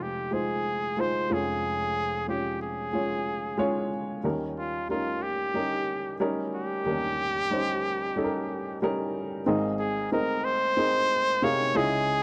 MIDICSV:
0, 0, Header, 1, 3, 480
1, 0, Start_track
1, 0, Key_signature, -4, "major"
1, 0, Tempo, 652884
1, 1200, Time_signature, 4, 2, 24, 8
1, 8991, End_track
2, 0, Start_track
2, 0, Title_t, "Trumpet"
2, 0, Program_c, 0, 56
2, 19, Note_on_c, 0, 67, 77
2, 245, Note_on_c, 0, 68, 92
2, 256, Note_off_c, 0, 67, 0
2, 739, Note_on_c, 0, 72, 96
2, 750, Note_off_c, 0, 68, 0
2, 979, Note_on_c, 0, 68, 93
2, 990, Note_off_c, 0, 72, 0
2, 1681, Note_off_c, 0, 68, 0
2, 1685, Note_on_c, 0, 67, 73
2, 1906, Note_off_c, 0, 67, 0
2, 1924, Note_on_c, 0, 68, 71
2, 2854, Note_off_c, 0, 68, 0
2, 3369, Note_on_c, 0, 65, 82
2, 3589, Note_off_c, 0, 65, 0
2, 3607, Note_on_c, 0, 65, 81
2, 3839, Note_on_c, 0, 67, 95
2, 3850, Note_off_c, 0, 65, 0
2, 4561, Note_off_c, 0, 67, 0
2, 4815, Note_on_c, 0, 67, 110
2, 6459, Note_off_c, 0, 67, 0
2, 7201, Note_on_c, 0, 68, 79
2, 7424, Note_off_c, 0, 68, 0
2, 7448, Note_on_c, 0, 70, 92
2, 7680, Note_on_c, 0, 72, 114
2, 7691, Note_off_c, 0, 70, 0
2, 8412, Note_on_c, 0, 73, 114
2, 8423, Note_off_c, 0, 72, 0
2, 8651, Note_on_c, 0, 68, 107
2, 8662, Note_off_c, 0, 73, 0
2, 8991, Note_off_c, 0, 68, 0
2, 8991, End_track
3, 0, Start_track
3, 0, Title_t, "Upright piano"
3, 0, Program_c, 1, 0
3, 0, Control_c, 1, 64, 127
3, 0, Note_on_c, 1, 29, 62
3, 0, Note_on_c, 1, 41, 61
3, 0, Note_on_c, 1, 56, 57
3, 0, Note_on_c, 1, 63, 57
3, 0, Note_on_c, 1, 65, 52
3, 0, Note_on_c, 1, 72, 63
3, 187, Note_off_c, 1, 56, 0
3, 190, Note_off_c, 1, 63, 0
3, 191, Note_off_c, 1, 65, 0
3, 193, Note_off_c, 1, 72, 0
3, 228, Note_on_c, 1, 56, 65
3, 231, Note_on_c, 1, 63, 58
3, 237, Note_on_c, 1, 65, 54
3, 242, Note_on_c, 1, 72, 66
3, 667, Note_off_c, 1, 56, 0
3, 668, Note_off_c, 1, 63, 0
3, 671, Note_off_c, 1, 65, 0
3, 674, Note_off_c, 1, 72, 0
3, 713, Note_on_c, 1, 56, 69
3, 717, Note_on_c, 1, 63, 62
3, 721, Note_on_c, 1, 65, 64
3, 728, Note_on_c, 1, 72, 81
3, 928, Note_off_c, 1, 29, 0
3, 929, Note_off_c, 1, 41, 0
3, 943, Note_off_c, 1, 56, 0
3, 949, Note_off_c, 1, 65, 0
3, 954, Note_on_c, 1, 56, 73
3, 957, Note_on_c, 1, 61, 68
3, 958, Note_off_c, 1, 63, 0
3, 959, Note_on_c, 1, 41, 61
3, 960, Note_on_c, 1, 65, 68
3, 961, Note_on_c, 1, 29, 58
3, 964, Note_off_c, 1, 72, 0
3, 964, Note_on_c, 1, 73, 78
3, 968, Control_c, 1, 64, 0
3, 1114, Control_c, 1, 64, 127
3, 1607, Note_off_c, 1, 56, 0
3, 1608, Note_off_c, 1, 61, 0
3, 1610, Note_off_c, 1, 65, 0
3, 1612, Note_off_c, 1, 73, 0
3, 1673, Note_on_c, 1, 56, 54
3, 1677, Note_on_c, 1, 61, 59
3, 1680, Note_on_c, 1, 65, 53
3, 1684, Note_on_c, 1, 73, 68
3, 2110, Note_off_c, 1, 56, 0
3, 2112, Note_off_c, 1, 61, 0
3, 2114, Note_off_c, 1, 65, 0
3, 2116, Note_off_c, 1, 73, 0
3, 2153, Note_on_c, 1, 56, 59
3, 2155, Note_on_c, 1, 61, 54
3, 2159, Note_on_c, 1, 65, 60
3, 2164, Note_on_c, 1, 73, 65
3, 2590, Note_off_c, 1, 56, 0
3, 2592, Note_off_c, 1, 61, 0
3, 2593, Note_off_c, 1, 65, 0
3, 2596, Note_off_c, 1, 73, 0
3, 2629, Note_on_c, 1, 56, 89
3, 2635, Note_on_c, 1, 61, 81
3, 2640, Note_on_c, 1, 65, 77
3, 2640, Note_on_c, 1, 73, 104
3, 2852, Note_off_c, 1, 41, 0
3, 2853, Note_off_c, 1, 29, 0
3, 3068, Note_off_c, 1, 56, 0
3, 3071, Note_off_c, 1, 61, 0
3, 3074, Note_off_c, 1, 65, 0
3, 3074, Note_off_c, 1, 73, 0
3, 3113, Note_on_c, 1, 55, 73
3, 3118, Note_on_c, 1, 39, 67
3, 3118, Note_on_c, 1, 61, 68
3, 3119, Note_on_c, 1, 51, 67
3, 3123, Note_on_c, 1, 63, 63
3, 3126, Note_on_c, 1, 70, 85
3, 3131, Control_c, 1, 64, 0
3, 3245, Control_c, 1, 64, 127
3, 3551, Note_off_c, 1, 55, 0
3, 3553, Note_off_c, 1, 61, 0
3, 3556, Note_off_c, 1, 63, 0
3, 3557, Note_off_c, 1, 70, 0
3, 3596, Note_on_c, 1, 55, 56
3, 3602, Note_on_c, 1, 61, 55
3, 3605, Note_on_c, 1, 63, 54
3, 3609, Note_on_c, 1, 70, 69
3, 4032, Note_off_c, 1, 55, 0
3, 4035, Note_off_c, 1, 61, 0
3, 4037, Note_off_c, 1, 63, 0
3, 4039, Note_off_c, 1, 70, 0
3, 4072, Note_on_c, 1, 55, 61
3, 4077, Note_on_c, 1, 61, 61
3, 4082, Note_on_c, 1, 63, 66
3, 4087, Note_on_c, 1, 70, 69
3, 4510, Note_off_c, 1, 55, 0
3, 4513, Note_off_c, 1, 61, 0
3, 4515, Note_off_c, 1, 63, 0
3, 4518, Note_off_c, 1, 70, 0
3, 4558, Note_on_c, 1, 55, 98
3, 4561, Note_on_c, 1, 61, 89
3, 4565, Note_on_c, 1, 63, 84
3, 4569, Note_on_c, 1, 70, 96
3, 4993, Note_off_c, 1, 55, 0
3, 4995, Note_off_c, 1, 61, 0
3, 4997, Note_off_c, 1, 63, 0
3, 4999, Note_off_c, 1, 70, 0
3, 5011, Note_off_c, 1, 39, 0
3, 5012, Note_off_c, 1, 51, 0
3, 5036, Note_on_c, 1, 55, 65
3, 5043, Note_on_c, 1, 39, 62
3, 5043, Note_on_c, 1, 51, 63
3, 5043, Note_on_c, 1, 61, 62
3, 5044, Note_on_c, 1, 63, 55
3, 5049, Note_on_c, 1, 70, 71
3, 5472, Note_off_c, 1, 55, 0
3, 5476, Note_off_c, 1, 61, 0
3, 5476, Note_off_c, 1, 63, 0
3, 5479, Note_off_c, 1, 70, 0
3, 5517, Note_on_c, 1, 55, 74
3, 5522, Note_on_c, 1, 61, 69
3, 5525, Note_on_c, 1, 63, 75
3, 5531, Note_on_c, 1, 72, 79
3, 5953, Note_off_c, 1, 55, 0
3, 5955, Note_off_c, 1, 61, 0
3, 5957, Note_off_c, 1, 63, 0
3, 5960, Note_off_c, 1, 72, 0
3, 5999, Note_on_c, 1, 55, 72
3, 6005, Note_on_c, 1, 61, 70
3, 6007, Note_on_c, 1, 63, 68
3, 6011, Note_on_c, 1, 69, 67
3, 6055, Note_off_c, 1, 69, 0
3, 6059, Note_on_c, 1, 70, 85
3, 6433, Note_off_c, 1, 55, 0
3, 6437, Note_off_c, 1, 61, 0
3, 6438, Note_off_c, 1, 63, 0
3, 6464, Note_off_c, 1, 70, 0
3, 6485, Note_on_c, 1, 55, 93
3, 6490, Note_on_c, 1, 61, 77
3, 6492, Note_on_c, 1, 63, 81
3, 6497, Note_on_c, 1, 70, 103
3, 6916, Note_off_c, 1, 55, 0
3, 6919, Note_off_c, 1, 61, 0
3, 6920, Note_off_c, 1, 63, 0
3, 6922, Note_off_c, 1, 70, 0
3, 6932, Note_off_c, 1, 39, 0
3, 6933, Note_off_c, 1, 51, 0
3, 6957, Note_on_c, 1, 60, 81
3, 6961, Note_on_c, 1, 63, 83
3, 6962, Note_on_c, 1, 44, 79
3, 6962, Note_on_c, 1, 68, 82
3, 6966, Note_on_c, 1, 32, 82
3, 6967, Note_on_c, 1, 70, 74
3, 6970, Control_c, 1, 64, 0
3, 6971, Note_on_c, 1, 75, 90
3, 7100, Control_c, 1, 64, 127
3, 7392, Note_off_c, 1, 60, 0
3, 7394, Note_off_c, 1, 63, 0
3, 7394, Note_off_c, 1, 68, 0
3, 7397, Note_off_c, 1, 70, 0
3, 7399, Note_off_c, 1, 75, 0
3, 7441, Note_on_c, 1, 60, 72
3, 7445, Note_on_c, 1, 63, 65
3, 7448, Note_on_c, 1, 68, 57
3, 7450, Note_on_c, 1, 70, 61
3, 7452, Note_on_c, 1, 75, 83
3, 7874, Note_off_c, 1, 60, 0
3, 7876, Note_off_c, 1, 63, 0
3, 7877, Note_off_c, 1, 68, 0
3, 7878, Note_off_c, 1, 70, 0
3, 7879, Note_off_c, 1, 75, 0
3, 7917, Note_on_c, 1, 60, 71
3, 7923, Note_on_c, 1, 63, 63
3, 7925, Note_on_c, 1, 68, 72
3, 7930, Note_on_c, 1, 75, 82
3, 7931, Note_on_c, 1, 70, 69
3, 8351, Note_off_c, 1, 60, 0
3, 8354, Note_off_c, 1, 63, 0
3, 8355, Note_off_c, 1, 68, 0
3, 8358, Note_off_c, 1, 70, 0
3, 8358, Note_off_c, 1, 75, 0
3, 8398, Note_on_c, 1, 48, 84
3, 8401, Note_on_c, 1, 63, 77
3, 8403, Note_on_c, 1, 68, 85
3, 8408, Note_on_c, 1, 77, 95
3, 8410, Note_on_c, 1, 70, 76
3, 8610, Note_off_c, 1, 44, 0
3, 8612, Note_off_c, 1, 32, 0
3, 8626, Note_off_c, 1, 63, 0
3, 8634, Note_off_c, 1, 68, 0
3, 8634, Note_on_c, 1, 61, 84
3, 8637, Note_on_c, 1, 63, 77
3, 8638, Note_off_c, 1, 48, 0
3, 8638, Note_on_c, 1, 49, 70
3, 8640, Note_on_c, 1, 37, 73
3, 8641, Note_on_c, 1, 64, 88
3, 8644, Note_off_c, 1, 70, 0
3, 8644, Note_off_c, 1, 77, 0
3, 8645, Note_on_c, 1, 68, 82
3, 8645, Note_on_c, 1, 75, 99
3, 8648, Control_c, 1, 64, 0
3, 8788, Control_c, 1, 64, 127
3, 8991, Note_off_c, 1, 37, 0
3, 8991, Note_off_c, 1, 49, 0
3, 8991, Note_off_c, 1, 61, 0
3, 8991, Note_off_c, 1, 63, 0
3, 8991, Note_off_c, 1, 64, 0
3, 8991, Note_off_c, 1, 68, 0
3, 8991, Note_off_c, 1, 75, 0
3, 8991, End_track
0, 0, End_of_file